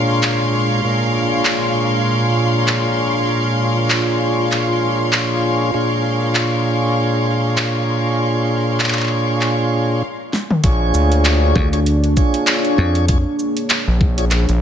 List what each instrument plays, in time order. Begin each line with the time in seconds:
Already playing: tonewheel organ A#2 D4 F4 G#4 C#5, analog synth pad A#2 G#3 D4 C#5, string section A#4 F5 C6
0.23 clap
0.84 tonewheel organ A#2 D4 F4 G#4 C#5, analog synth pad F4
1.45 clap
2.68 clap
3.90 clap
4.52 clap
5.13 clap
5.74 tonewheel organ A#2 D4 F4 G#4 C#5
6.35 clap
7.57 clap
8.80 clap
8.84 clap
8.89 clap
8.93 clap
8.97 clap
9.01 clap
9.04 clap
9.07 clap
9.41 clap
10.33 snare
10.51 mid tom
10.64 analog synth bass A#1, analog synth pad A#3 D4 G#4 C#5, tonewheel organ D4 F4 G#4 C#5, kick, closed hi-hat
10.94 analog synth bass D2, shaker
11.12 closed hi-hat
11.25 clap, closed hi-hat
11.56 slap bass D2, kick, cross-stick
11.73 tonewheel organ D4 F4 G#4 C#5, closed hi-hat
11.86 closed hi-hat
12.04 closed hi-hat
12.17 tonewheel organ D4 F4 G#4 C#5, kick, shaker
12.34 closed hi-hat
12.47 clap, closed hi-hat
12.65 closed hi-hat
12.78 slap bass F2
12.95 closed hi-hat
13.08 tonewheel organ D4 F4 G#4 C#5, kick, closed hi-hat
13.39 shaker
13.57 closed hi-hat
13.70 clap, closed hi-hat
13.88 analog synth bass A#1
14.01 kick
14.18 tonewheel organ D4 F4 G#4 C#5, closed hi-hat
14.31 cross-stick, clap, closed hi-hat
14.49 analog synth bass A#1, closed hi-hat